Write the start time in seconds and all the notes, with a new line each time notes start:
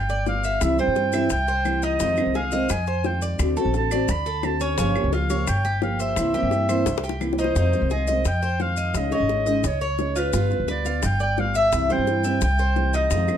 Already playing: G1 G5
0.09 D5, high bongo, maracas
0.26 G3 B3 F4 F5, high bongo, low bongo, maracas
0.44 E5, maracas
0.61 C2 C3 E3 G3 C4 E4 E5, high bongo, claves, maracas
0.78 E3 G3 C4 E4 C5 G5, high bongo, maracas
0.88 G2
0.95 E3 G3 C4 E4, high bongo, maracas
1.12 E3 G3 C4 E4 E5, high bongo, claves, maracas
1.30 C2 G5, muted nylon-string guitar stroke, high bongo, maracas
1.48 C5, high bongo, maracas
1.65 E3 G3 C4 E4, high bongo, low bongo, claves, maracas
1.82 D#4 D#5, maracas
2.00 F2 C3 D#3 G#3 C4 D#4 F4, high bongo, maracas
2.17 D#3 G#3 C4 F4, high bongo, claves, maracas
2.26 C2
2.34 D#3 G#3 C4 G#4 F5, high bongo, maracas
2.51 D#3 G#3 C4 F4 D#5, high bongo, maracas
2.69 F2 G#5, high bongo, claves, maracas
2.86 C5, high bongo, maracas
3.04 D#3 G#3 C4 F4 G5, high bongo, low bongo, maracas
3.22 D5, maracas
3.39 D2 D3 A3 C4 F#4, high bongo, claves, maracas
3.57 A3 C4 F#4 A4, high bongo, maracas
3.65 A1
3.73 D3 A3 C4 F#4 A5, high bongo, maracas
3.91 A3 C4 F#4 D5, high bongo, claves, maracas
4.08 D2 B5, muted nylon-string guitar stroke, high bongo, maracas
4.26 A4, high bongo, maracas
4.43 D3 A3 C4 F#4 A5, high bongo, low bongo, claves, maracas
4.60 C#4 C#5, maracas
4.77 G1 C#3 F3 A#3 C#4 F4 G4, high bongo, maracas
4.95 F3 A#3 F4 G4, high bongo, claves, maracas
5.04 C#2
5.12 F3 A#3 F4 G4 F5, high bongo, maracas
5.29 F3 A#3 F4 G4 C#5, high bongo, maracas
5.47 G1 G5, muted nylon-string guitar stroke, high bongo, claves, maracas
5.65 G4, high bongo, maracas
5.82 F3 A#3 F4 G4 F5, high bongo, low bongo, maracas
6.00 C5 E5, maracas
6.16 C2 C3 E3 A#3 C4 E4, high bongo, claves, maracas
6.34 E3 A#3 C4 E4 G4, high bongo, maracas
6.43 G2
6.51 E3 A#3 C4 E4, high bongo, maracas
6.68 E3 A#3 C4 E4 C5, high bongo, claves, maracas
6.86 C2, muted nylon-string guitar stroke, high bongo, maracas
6.98 high bongo
7.04 G4, maracas
7.09 low bongo
7.20 E3 A#3 C4 E4, low bongo, claves, maracas
7.33 low bongo
7.39 D#4 C5, maracas
7.44 low bongo
7.56 F2 C3 D#3 G#3 C4 D#4 F4, high bongo, maracas
7.73 D#3 G#3 C4 F4, high bongo, maracas
7.82 C2
7.90 D#3 G#3 C4 F4 G#4 D#5, high bongo, maracas
8.07 D#3 G#3 C4 F4 D#5, high bongo, maracas
8.25 F2 G5, muted nylon-string guitar stroke, high bongo, maracas
8.42 C5, high bongo, maracas
8.60 D#3 G#3 C4 F4 F5, high bongo, low bongo, maracas
8.77 D#5, maracas
8.94 C#2 C#3 G#3 C#4 D#4 G#4 D#5, high bongo, maracas
9.11 G#3 C#4 D#4 G#4 C#5 D#5, high bongo, maracas
9.20 G#1
9.29 G#3 C#4 D#4 G#4, high bongo, maracas
9.46 G#3 C#4 D#4 G#4 D#5, high bongo, maracas
9.64 C#2 C#5, muted nylon-string guitar stroke, high bongo, maracas
9.81 C#5, high bongo, maracas
9.98 G#3 C#4 D#4 G#4, high bongo, low bongo, maracas
10.16 F4 B4, maracas
10.32 G1 G3 B3 F4, high bongo, maracas
10.51 B3 F4, high bongo, maracas
10.60 D2
10.68 G3 B3 F4 B4 D5, high bongo, maracas
10.85 B3 F4 F5, high bongo, maracas
11.02 G1 G5, muted nylon-string guitar stroke, high bongo, maracas
11.20 D5 G5, high bongo, maracas
11.37 G3 B3 F4 F5, high bongo, low bongo, maracas
11.55 E5, maracas
11.72 C2 C3 E3 G3 C4 E4, high bongo, maracas
11.89 E3 G3 C4 E4 C5 G5, high bongo, maracas
11.98 G2
12.07 E3 G3 C4 E4, high bongo, maracas
12.24 E3 G3 C4 E4 E5, high bongo, maracas
12.41 C2 G5, muted nylon-string guitar stroke, high bongo, maracas
12.59 C5, high bongo, maracas
12.76 E3 G3 C4 E4, high bongo, low bongo, maracas
12.94 D#4 D#5, maracas
13.11 F2 C3 D#3 G#3 C4 D#4 F4, high bongo, maracas
13.28 D#3 G#3 C4 F4, high bongo, claves, maracas